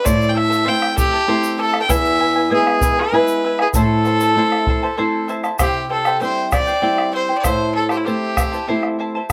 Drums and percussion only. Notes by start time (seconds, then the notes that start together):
0.06 bombo low, shaker
0.22 shaker
0.52 bombo rim, shaker
0.82 bombo rim
0.98 bombo low, shaker
1.44 shaker
1.74 bombo rim
1.89 bombo low, shaker
2.05 shaker
2.36 bombo rim
2.67 bombo rim
2.81 bombo low, shaker
3.28 shaker
3.59 bombo rim
3.74 bombo rim, bombo low, shaker
4.05 bombo rim, shaker
4.20 shaker
4.52 bombo rim
4.67 bombo low
5.29 shaker
5.44 bombo rim, shaker
5.59 bombo rim, bombo low, shaker
6.05 bombo rim, shaker
6.21 shaker
6.52 bombo rim, bombo low, shaker
6.67 shaker
6.98 bombo rim
7.44 bombo rim, bombo low, shaker
7.89 bombo rim, shaker
8.07 shaker
8.37 bombo rim, bombo low, shaker
8.53 shaker
8.83 bombo rim